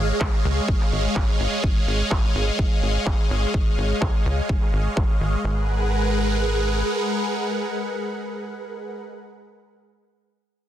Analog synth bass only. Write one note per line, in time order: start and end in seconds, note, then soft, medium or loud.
0.00 0.13 G#1 medium
0.21 0.29 C#2 loud
0.45 0.60 C#2 loud
0.68 0.76 G#1 medium
0.92 1.08 G#1 medium
1.16 1.32 G#1 medium
1.40 1.48 G#1 medium
1.64 1.79 G#1 loud
1.87 2.03 G#1 medium
2.11 2.27 G#1 loud
2.35 2.51 G#1 loud
2.59 2.67 G#1 medium
2.83 2.98 G#1 medium
3.06 3.14 G#1 medium
3.30 3.46 G#1 medium
3.54 3.70 G#1 medium
3.78 3.94 G#1 medium
4.02 4.10 C#2 loud
4.26 4.41 C#2 loud
4.49 4.57 G#1 medium
4.73 4.89 G#1 medium
4.97 5.05 G#1 medium
5.21 5.36 G#1 medium
5.44 6.83 G#1 medium